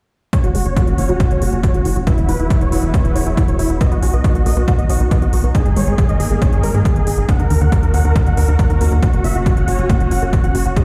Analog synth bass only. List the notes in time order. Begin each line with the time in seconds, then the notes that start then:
0.44 F#1
0.55 F#1
0.66 F#1
0.87 F#1
0.98 F#1
1.09 F#1
1.31 F#1
1.42 F#1
1.53 F#1
1.74 F#1
1.85 F#1
1.96 F#1
2.18 E1
2.29 E1
2.40 E1
2.61 E1
2.72 E1
2.83 E1
3.05 E1
3.16 E1
3.26 E1
3.48 E1
3.59 E1
3.70 E1
3.92 B1
4.03 B1
4.13 B1
4.35 B1
4.46 B1
4.57 B1
4.79 B1
4.90 B1
5.00 B1
5.22 B1
5.33 B1
5.44 B1
5.66 G#1
5.77 G#1
5.87 G#1
6.09 G#1
6.20 G#1
6.31 G#1
6.53 G#1
6.63 G#1
6.74 G#2
6.96 G#1
7.07 G#1
7.18 G#1
7.40 D#2
7.50 D#2
7.61 D#2
7.83 D#2
7.94 D#2
8.05 D#2
8.26 D#2
8.37 D#2
8.48 D#2
8.70 D#2
8.81 D#2
8.92 D#2
9.13 F#1
9.24 F#1
9.35 F#1
9.57 F#1
9.68 F#1
9.79 F#1
10.00 F#1
10.11 F#1
10.22 F#1
10.44 F#1
10.55 F#1
10.66 F#1